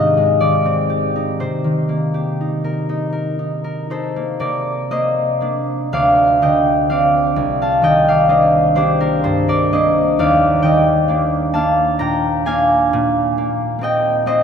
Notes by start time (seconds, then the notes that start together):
Already playing: G#2 C4 D#4 G4 C5 D#5 F5 G5
0.17 G#3
0.40 D#3 D5
0.65 C4
0.90 G4
1.16 D#4
1.40 C3 C5
1.64 D#3
1.89 A#3
2.14 G4
2.41 D#4
2.64 A#4
2.89 D#4
3.13 A#4
3.39 D#4
3.64 A#4
3.90 D#4 A4 C5
4.16 A#3
4.39 C3 A#4 D5
4.91 A#3 C5 D#5
5.41 A#3 D4
5.93 D2 D5 F5
6.42 D3 D#5 G5
6.90 C4 D4 D5 F5
7.36 C2
7.62 F5 A5
7.82 D#3 D#5 G5
8.08 D5 F5
8.29 A#3 D4 C5 D#5
8.75 A#3 D4 G4 C5
9.01 G4 A#4
9.24 G2 A4 C5
9.48 A#4 D5
9.72 A#3 D4 C5 D#5
10.19 D#2 D5 F5
10.62 D#3 D#5 G5
11.08 A#3 D4
11.53 A#3 D4 F5 A5
11.99 A#2 G5 A#5
12.45 A#3 D4 F5 G#5
12.93 A#2
13.38 A#3
13.79 A#3 C4
13.83 D#5 G5
14.26 A#3 C4 C5 D#5